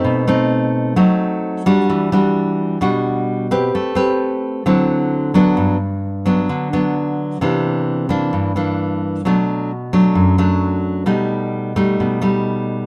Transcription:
\new Staff \with { instrumentName = "Nylon-string guitar" } { \time 4/4 \key b \phrygian \tempo 4 = 131 << { <a c' ees'>8 <a c' dis'>4. <a c' dis'>4. <g d' fis'>8~ | <g d' fis'>8 <g d' fis'>4. <g d' fis'>4. <c' g' b'>8~ | <c' g' b'>8 <c' g' b'>4. <fis c' e'>4. <fis b d'>8~ | <fis b d'>8 r4 <fis b d'>4 <fis b d'>4. |
<e bes d'>4. <e bes d'>4 <e bes d'>4. | <fis a d'>4 r8 <fis a d'>4 <fis a d'>4. | <g a dis'>4. <g a dis'>4 <g a dis'>4. | } \\ { b,2 fis2 | e2 b,2 | a2 d2 | g,2 d2 |
c2 g,2 | b,2 fis,2 | b,2 b,2 | } >> }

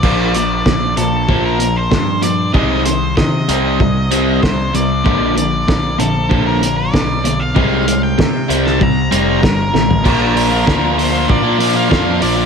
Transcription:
<<
  \new Staff \with { instrumentName = "Lead electric guitar" } { \time 4/4 \key bes \major \tempo 4 = 96 d''8 d''4 a'8. bes'8 c''8. d''8 | ees''8 c''8 ees''2 c''8 d''8~ | d''8 d''4 a'8. bes'8 d''4 f''16~ | f''8. g''4 a''16 bes''4 bes'4 |
bes'4. c''8 d''8. f''8. d''8 | }
  \new Staff \with { instrumentName = "Overdriven electric guitar" } { \clef bass \time 4/4 \key bes \major <bes, f bes>8 <bes, f>8 <bes, f>8 <bes, f>8 <bes, f bes>8 <bes, f>8 <bes, f>8 <bes, f>8 | <c ees aes>8 <c ees>8 <c ees>8 <c g c'>8 <c g>8 <c g c'>8 <c g>8 <c g>8 | <bes, d f>8 <bes, d>8 <bes, d>8 <bes, d>8 <bes, d f>8 <bes, d>8 <bes, d>8 <bes, d>8 | <c aes c'>8 <c aes>8 <c aes>8 <c g c'>8 <c g>8 <c g c'>8 <c g>8 <c g>8 |
<bes, f bes d' f'>8 <f bes d' f'>16 <bes d' f'>16 <bes, f bes d' f'>8. <bes d' f'>8 <bes d' f'>16 <f bes d' f'>16 <bes d' f'>16 <bes, f bes d' f'>8 <f bes d' f'>16 <bes d' f'>16 | }
  \new Staff \with { instrumentName = "Picked electric bass" } { \clef bass \time 4/4 \key bes \major bes,,4 bes,,8 bes,,8 bes,,4 g,4 | c,4 c8 c,4. c,8 c,8 | bes,,4 bes,,8 bes,,8 bes,,4 ces,4 | c,4 c8 c,4 f,,8 g,,8 a,,8 |
bes,,4 d,4 bes,4 f,8 bes,,8 | }
  \new DrumStaff \with { instrumentName = "Drums" } \drummode { \time 4/4 <cymc bd>8 hh8 <bd sn>8 hh8 bd8 hh8 <bd sn>8 hh8 | bd8 hh8 <bd sn>8 hh8 bd8 hh8 <bd sn>8 hh8 | bd8 hh8 <bd sn>8 hh8 bd8 hh8 <bd sn>8 hh8 | bd8 hh8 <bd sn>8 hh16 sn16 bd8 hh8 <bd sn>8 sn16 tomfh16 |
<cymc bd>8 hho8 <bd sn>8 hho8 bd8 hho8 <bd sn>8 hho8 | }
>>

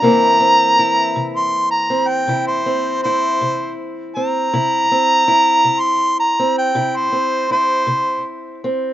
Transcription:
<<
  \new Staff \with { instrumentName = "Harmonica" } { \time 12/8 \key c \major \tempo 4. = 54 bes''4.~ bes''16 c'''8 bes''8 g''8 c''8. c''4 r8 bes''8~ | bes''4.~ bes''16 c'''8 bes''8 g''8 c''8. c''4 r4 | }
  \new Staff \with { instrumentName = "Steel-string acoustic guitar" } { \time 12/8 \key c \major << { <e bes c' e'>8 c'8 e'4. c'8 e'8 c'8 e'4. c'8 | e'8 c'8 e'4. c'8 e'8 c'8 e'4. c'8 | } \\ { c4 r8 c4 r8 c4 r8 c4 r8 | c4 r8 c4 r8 c4 r8 c4 r8 | } >> }
>>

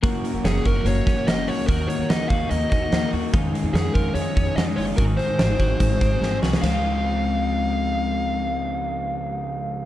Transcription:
<<
  \new Staff \with { instrumentName = "Lead electric guitar" } { \time 4/4 \key des \major \tempo 4 = 146 r4 aes'8 bes'8 des''4 ees''8 des''8 | bes'8 des''8 ees''8 f''8 ees''8 ees''4 r8 | r4 aes'8 bes'8 des''4 ees''8 des''8 | bes'8 c''2. r8 |
f''1~ | f''1 | }
  \new Staff \with { instrumentName = "Clean electric guitar" } { \time 4/4 \key des \major <bes ges'>8 bes8 des'8 ges'8 bes8 des'8 bes8 ges'8 | <ees ges'>8 bes8 ees'8 ges'8 bes8 des'16 ees'16 bes8 ges'8 | <ees f'>8 aes8 des'8 f'8 aes8 des'8 aes8 f'8 | <ees ges'>8 aes8 c'8 ges'8 aes8 c'8 aes8 ges'8 |
<aes c' f'>1~ | <aes c' f'>1 | }
  \new Staff \with { instrumentName = "Overdriven electric guitar" } { \time 4/4 \key des \major <ges, des ges bes des' ges'>8. <ges, des ges bes des' ges'>8 <ges, des ges bes des' ges'>8. <ges bes des' ges'>8. <ges bes des' ges'>8 <ges bes des' ges'>8. | <ees bes ees' ges'>8. <ees bes ees' ges'>8 <ees bes ees' ges'>8. <ees bes ees' ges'>8. <bes ees' ges'>8 <bes ees' ges'>8. | <f, ees aes des' ees' aes'>8. <f, ees aes des' ees' aes'>8 <f, ees aes des' ees' aes'>8. <aes des' ees' aes'>8. <aes des' ees' aes'>8 <aes des' ees' aes'>8. | <aes, ees ges aes c' aes'>8. <aes, ees ges aes c' aes'>8 <aes, ees ges aes c' aes'>8. <ges aes c' aes'>8. <ges aes c' aes'>8 <ges aes c' aes'>8. |
<des f aes c' aes'>1~ | <des f aes c' aes'>1 | }
  \new Staff \with { instrumentName = "Upright bass" } { \clef bass \time 4/4 \key des \major ges,,8 r16 ges,,16 ges,,8 ges,,8 ges,,8 ges,,8 ges,,8 des,8 | ees,8 r16 ees,16 ees,8 ees,8 ees,8 ees,8 ees,8 ees,8 | f,8 r16 f,16 f,8 f,8 f,8 f,8 f,8 ges,,8 | aes,,8 r16 aes,,16 aes,,8 aes,,8 aes,,8 aes,,8 aes,,8 c,8 |
des,1~ | des,1 | }
  \new DrumStaff \with { instrumentName = "Drums" } \drummode { \time 4/4 <hh bd>8 hh8 <hh sn>8 <hh bd>8 hh8 <hh bd sn>8 <hh sn>8 hho8 | <hh bd>8 hh8 <hh sn>8 <hh bd>8 hh8 <hh bd>8 <hh sn>8 hho8 | <hh bd>8 hh8 <hh sn>8 <hh bd>8 hh8 <hh bd>8 <hh sn>8 hho8 | <hh bd>8 hh8 <hh sn>8 <hh bd>8 <hh bd>8 <hh bd>8 sn8 sn16 sn16 |
<rb sn>4 r4 r4 r4 | r4 r4 r4 r4 | }
>>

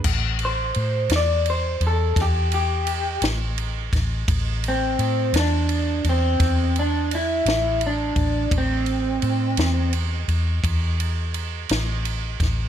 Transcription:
<<
  \new Staff \with { instrumentName = "Clean electric guitar" } { \time 12/8 \key a \minor \tempo 4. = 57 r8 c''4 d''8 c''8 a'8 g'8 g'4 r4. | r8 c'4 d'4 c'4 d'8 e'4 d'4 | c'2 r1 | }
  \new Staff \with { instrumentName = "Fingered electric bass" } { \clef bass \time 12/8 \key a \minor a,,4 a,8 e,4 e,8 e,4. a,,4 a,,8 | a,,4 a,8 e,4 e,8 e,4. a,,4 a,,8 | a,,4 a,8 e,4 e,8 e,4. a,,4 a,,8 | }
  \new DrumStaff \with { instrumentName = "Drums" } \drummode { \time 12/8 <cymc bd>8 cymr8 cymr8 <cymr sn>8 cymr8 cymr8 <bd cymr sn>8 cymr8 cymr8 <cymr sn>8 cymr8 <bd cymr sn>8 | <bd cymr>8 cymr8 cymr8 <cymr sn>8 cymr8 cymr8 <bd cymr sn>8 cymr8 cymr8 <cymr sn>8 cymr8 <bd cymr>8 | <bd cymr>8 cymr8 cymr8 <cymr sn>8 cymr8 cymr8 <bd cymr>8 cymr8 cymr8 <cymr sn>8 cymr8 <bd cymr sn>8 | }
>>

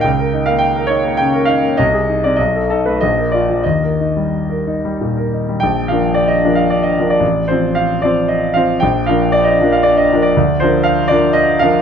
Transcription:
\new Staff \with { instrumentName = "Grand piano" } { \time 3/4 \key bes \mixolydian \tempo 4 = 111 << { g''8. f''16 g''8 des''8 g''8 f''8 | ees''8. d''16 dis''8 a'16 b'16 ees''8 d''8 | ees''2 r4 | \key bes \major g''8 f''8 d''16 ees''8 f''16 d''16 ees''8 d''16~ |
d''8 c''8 f''8 d''8 ees''8 f''8 | g''8 f''8 d''16 ees''8 f''16 d''16 ees''8 d''16~ | d''8 c''8 f''8 d''8 ees''8 f''8 | } \\ { des,16 bes'16 ees'16 bes8 bes'16 ees'16 bes16 des16 bes'16 ees'16 bes16 | c,16 aes'16 ees'16 c'16 b,,16 a'16 dis'16 a16 bes,,16 bes'16 f'16 f16 | ees,16 bes'16 ees'16 g8 bes'16 ees'16 g16 bes,16 bes'16 ees'16 g16 | bes,,8 <f d' bes'>4 <f d' bes'>4 <f d' bes'>8 |
a,,8 <f c'>4 <f c' c''>4 <f c' c''>8 | bes,,8 <f d' bes'>4 <f d' bes'>4 <f d' bes'>8 | d,8 <f d' bes'>4 <f d' bes'>4 <f d' bes'>8 | } >> }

